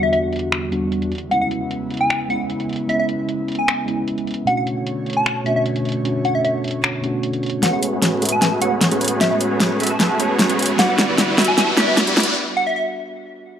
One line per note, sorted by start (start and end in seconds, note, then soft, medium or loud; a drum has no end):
0.00 0.71 E2 medium
0.00 1.09 E2 medium
0.00 1.09 D3 medium
0.00 0.71 G3 medium
0.00 1.09 G3 medium
0.00 0.72 B3 medium
0.00 0.72 D4 medium
0.00 0.73 F#4 medium
0.00 1.08 F#4 medium
0.00 0.09 E5 medium
0.13 0.19 E5 medium
0.13 closed hi-hat medium
0.33 closed hi-hat soft
0.36 closed hi-hat medium
0.39 closed hi-hat medium
0.52 finger snap medium
0.52 closed hi-hat medium
0.71 1.10 E2 medium
0.71 1.10 G3 medium
0.71 1.10 B3 medium
0.71 1.11 D4 medium
0.71 1.11 F#4 medium
0.71 closed hi-hat medium
0.92 closed hi-hat medium
1.02 closed hi-hat medium
1.12 4.44 C#3 medium
1.12 4.44 B3 medium
1.12 4.44 E4 medium
1.12 closed hi-hat soft
1.15 closed hi-hat medium
1.18 closed hi-hat medium
1.29 2.27 G#3 medium
1.29 2.27 B3 medium
1.29 2.28 C#4 medium
1.29 1.38 F#5 medium
1.29 closed hi-hat medium
1.33 2.29 E4 medium
1.41 1.48 F#5 medium
1.51 closed hi-hat medium
1.71 closed hi-hat medium
1.90 closed hi-hat soft
1.94 closed hi-hat medium
1.97 2.08 G#5 medium
1.97 closed hi-hat medium
2.10 2.21 G#5 medium
2.10 finger snap medium
2.10 closed hi-hat medium
2.28 2.86 G#3 medium
2.28 2.87 B3 medium
2.28 2.87 C#4 medium
2.28 2.41 F#5 medium
2.28 closed hi-hat medium
2.32 2.88 E4 medium
2.50 closed hi-hat medium
2.60 closed hi-hat medium
2.69 closed hi-hat soft
2.73 closed hi-hat medium
2.76 closed hi-hat medium
2.87 3.85 G#3 medium
2.87 3.85 B3 medium
2.87 3.86 C#4 medium
2.87 3.87 E4 medium
2.87 2.96 E5 medium
2.87 closed hi-hat medium
2.99 3.06 E5 medium
3.09 closed hi-hat medium
3.29 closed hi-hat medium
3.48 closed hi-hat soft
3.52 closed hi-hat medium
3.55 3.98 G#5 medium
3.55 closed hi-hat medium
3.68 finger snap medium
3.68 closed hi-hat medium
3.86 4.44 G#3 medium
3.86 4.45 B3 medium
3.86 4.45 C#4 medium
3.86 closed hi-hat medium
3.90 4.46 E4 medium
4.08 closed hi-hat medium
4.18 closed hi-hat medium
4.27 closed hi-hat soft
4.31 closed hi-hat medium
4.34 closed hi-hat medium
4.45 5.43 B2 medium
4.45 7.60 B2 medium
4.45 7.60 D3 medium
4.45 5.43 A3 medium
4.45 7.60 A3 medium
4.45 5.44 C#4 medium
4.45 5.44 D4 medium
4.45 7.60 C#5 medium
4.45 4.54 F#5 medium
4.45 closed hi-hat medium
4.49 5.45 F#4 medium
4.57 4.63 F#5 medium
4.67 closed hi-hat medium
4.87 closed hi-hat medium
5.06 closed hi-hat soft
5.10 closed hi-hat medium
5.13 5.24 A5 medium
5.13 closed hi-hat medium
5.26 5.37 A5 medium
5.26 finger snap medium
5.26 closed hi-hat medium
5.44 6.02 B2 medium
5.44 6.02 A3 medium
5.44 6.03 C#4 medium
5.44 6.03 D4 medium
5.44 6.04 F#4 medium
5.44 5.52 E5 medium
5.44 closed hi-hat medium
5.56 5.62 E5 medium
5.66 closed hi-hat medium
5.76 closed hi-hat medium
5.85 closed hi-hat soft
5.89 closed hi-hat medium
5.92 closed hi-hat medium
6.03 7.00 B2 medium
6.03 7.01 A3 medium
6.03 7.01 C#4 medium
6.03 7.02 D4 medium
6.03 7.02 F#4 medium
6.03 closed hi-hat medium
6.25 6.33 F#5 medium
6.25 closed hi-hat medium
6.35 6.41 E5 medium
6.45 6.51 E5 medium
6.45 closed hi-hat medium
6.64 closed hi-hat soft
6.68 closed hi-hat medium
6.71 closed hi-hat medium
6.84 finger snap medium
6.84 closed hi-hat medium
7.02 7.60 B2 medium
7.02 7.60 A3 medium
7.02 7.61 C#4 medium
7.02 7.61 D4 medium
7.02 closed hi-hat medium
7.06 7.62 F#4 medium
7.23 closed hi-hat medium
7.33 closed hi-hat medium
7.43 closed hi-hat soft
7.46 closed hi-hat medium
7.50 closed hi-hat medium
7.61 10.75 A2 medium
7.61 8.58 G#3 medium
7.61 10.76 G#3 medium
7.61 7.90 A3 medium
7.61 8.59 B3 medium
7.61 10.76 C#4 medium
7.61 8.60 C#4 medium
7.61 10.75 F#4 medium
7.61 7.90 F#4 medium
7.61 8.60 F#4 medium
7.61 7.90 G#4 medium
7.61 7.90 B4 medium
7.61 10.75 B4 medium
7.61 7.90 C#5 medium
7.61 7.69 F#5 medium
7.61 snare soft
7.61 closed hi-hat medium
7.61 riser medium
7.73 7.79 F#5 medium
7.83 closed hi-hat medium
7.93 8.20 A3 medium
7.93 8.20 F#4 medium
7.93 8.20 G#4 medium
7.93 8.20 B4 medium
7.93 8.20 C#5 loud
8.02 snare soft
8.02 closed hi-hat medium
8.22 8.32 A3 medium
8.22 8.32 F#4 medium
8.22 8.32 G#4 medium
8.22 8.32 B4 medium
8.22 8.32 E5 loud
8.22 closed hi-hat soft
8.25 closed hi-hat medium
8.29 8.40 A5 medium
8.29 closed hi-hat medium
8.42 8.59 A3 medium
8.42 8.59 F#4 medium
8.42 8.59 G#4 medium
8.42 8.59 B4 medium
8.42 8.59 E5 loud
8.42 8.53 A5 medium
8.42 snare medium
8.42 closed hi-hat medium
8.60 9.18 G#3 medium
8.60 8.89 A3 medium
8.60 9.18 B3 medium
8.60 9.19 C#4 medium
8.60 8.89 F#4 medium
8.60 9.20 F#4 medium
8.60 8.89 G#4 medium
8.60 8.89 B4 medium
8.60 8.89 C#5 loud
8.60 8.72 F#5 medium
8.60 closed hi-hat medium
8.81 snare medium
8.81 closed hi-hat medium
8.91 9.19 A3 medium
8.91 9.19 F#4 medium
8.91 9.19 G#4 medium
8.91 9.19 B4 medium
8.91 9.19 C#5 medium
8.91 closed hi-hat medium
9.01 closed hi-hat soft
9.04 closed hi-hat medium
9.08 closed hi-hat medium
9.19 10.16 G#3 medium
9.19 9.48 A3 medium
9.19 10.17 B3 medium
9.19 10.18 C#4 medium
9.19 9.48 F#4 medium
9.19 9.48 G#4 medium
9.19 9.48 B4 medium
9.19 9.48 C#5 medium
9.19 9.27 E5 medium
9.19 snare medium
9.19 closed hi-hat medium
9.23 10.18 F#4 medium
9.31 9.37 E5 medium
9.41 closed hi-hat medium
9.51 9.78 A3 medium
9.51 9.78 F#4 medium
9.51 9.78 G#4 medium
9.51 9.78 B4 medium
9.51 9.78 C#5 loud
9.60 snare medium
9.60 closed hi-hat medium
9.80 9.90 A3 loud
9.80 9.90 F#4 medium
9.80 9.90 G#4 medium
9.80 9.90 B4 medium
9.80 9.90 E5 loud
9.80 closed hi-hat soft
9.83 closed hi-hat medium
9.87 10.30 A5 medium
9.87 closed hi-hat medium
10.00 10.17 A3 medium
10.00 10.17 F#4 medium
10.00 10.17 G#4 medium
10.00 10.17 B4 medium
10.00 10.17 E5 loud
10.00 snare medium
10.00 closed hi-hat medium
10.18 10.76 G#3 medium
10.18 10.47 A3 medium
10.18 10.76 B3 medium
10.18 10.77 C#4 medium
10.18 10.47 F#4 medium
10.18 10.77 F#4 medium
10.18 10.47 G#4 medium
10.18 10.47 B4 medium
10.18 10.47 C#5 loud
10.18 closed hi-hat medium
10.39 snare medium
10.39 closed hi-hat medium
10.49 10.76 A3 medium
10.49 10.76 F#4 medium
10.49 10.77 G#4 medium
10.49 10.76 B4 medium
10.49 10.77 C#5 medium
10.49 closed hi-hat medium
10.59 closed hi-hat soft
10.62 closed hi-hat medium
10.66 closed hi-hat medium
10.77 12.35 E2 medium
10.77 12.35 D3 medium
10.77 11.74 G3 medium
10.77 12.35 G3 medium
10.77 11.06 G3 medium
10.77 11.75 B3 medium
10.77 11.75 D4 medium
10.77 11.06 E4 medium
10.77 12.35 F#4 medium
10.77 11.06 F#4 medium
10.77 11.06 B4 medium
10.77 11.06 D5 loud
10.77 10.85 F#5 medium
10.77 snare medium
10.77 closed hi-hat medium
10.81 11.76 F#4 medium
10.89 10.95 F#5 medium
10.99 snare medium
10.99 closed hi-hat medium
11.09 11.36 G3 medium
11.09 11.36 E4 medium
11.09 11.36 F#4 medium
11.09 11.36 B4 medium
11.09 11.36 D5 loud
11.18 snare medium
11.18 closed hi-hat medium
11.38 11.47 G3 medium
11.38 11.47 E4 medium
11.38 11.47 F#4 medium
11.38 11.47 B4 medium
11.38 11.47 E5 loud
11.38 snare medium
11.38 closed hi-hat soft
11.41 closed hi-hat medium
11.45 11.56 A5 medium
11.45 closed hi-hat medium
11.58 11.75 G3 medium
11.58 11.75 E4 medium
11.58 11.75 F#4 medium
11.58 11.75 B4 medium
11.58 11.75 E5 loud
11.58 11.68 A5 medium
11.58 snare medium
11.58 closed hi-hat medium
11.75 12.33 G3 medium
11.75 12.05 G3 loud
11.75 12.34 B3 medium
11.75 12.35 D4 medium
11.75 12.05 E4 medium
11.75 12.05 F#4 medium
11.75 12.35 F#4 medium
11.75 12.05 B4 medium
11.75 12.05 D5 loud
11.75 11.84 E5 medium
11.75 snare medium
11.75 closed hi-hat medium
11.88 11.94 E5 medium
11.97 snare medium
11.97 closed hi-hat medium
12.07 12.34 G3 medium
12.07 12.34 E4 medium
12.07 12.34 F#4 medium
12.07 12.34 B4 medium
12.07 12.34 D5 loud
12.07 closed hi-hat medium
12.17 snare medium
12.17 closed hi-hat soft
12.20 closed hi-hat medium
12.23 closed hi-hat medium
12.57 12.65 F#5 medium
12.67 12.73 E5 medium
12.76 12.83 E5 medium